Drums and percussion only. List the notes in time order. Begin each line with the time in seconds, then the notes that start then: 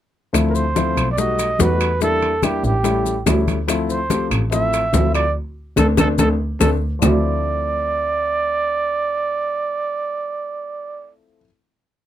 0.34 high bongo, high conga, high timbale, claves, maracas
0.55 high conga, maracas
0.76 high bongo, high conga, high timbale, low timbale, maracas
0.97 high bongo, high conga, high timbale, claves, maracas
1.18 high bongo, high conga, maracas
1.39 high bongo, high conga, high timbale, maracas
1.60 high bongo, low bongo, high conga, low timbale, maracas
1.80 high bongo, high timbale, claves, maracas
2.01 high bongo, high conga, maracas
2.22 high conga, high timbale
2.42 high bongo, high conga, high timbale, low timbale, claves, maracas
2.64 high bongo, high conga, maracas
2.84 high bongo, high conga, high timbale, maracas
3.05 high bongo, high conga, maracas
3.26 high bongo, low bongo, high conga, high timbale, low timbale, claves, maracas
3.48 high bongo, high conga, high timbale, maracas
3.68 high bongo, high conga, high timbale, claves, maracas
3.89 high conga, maracas
4.10 high bongo, high conga, high timbale, low timbale, maracas
4.31 high bongo, high conga, high timbale, claves, maracas
4.52 high bongo, high conga, maracas
4.73 high bongo, high conga, high timbale, maracas
4.93 high bongo, low bongo, high conga, low timbale, maracas
5.15 high bongo, high timbale, claves, maracas
5.77 high bongo, high conga, high timbale, claves, maracas
5.97 high bongo, high conga, high timbale, claves, maracas
6.18 high bongo, high conga, high timbale, claves, maracas
6.61 high bongo, high conga, high timbale, claves, maracas
7.02 low bongo, low conga, low timbale, claves, maracas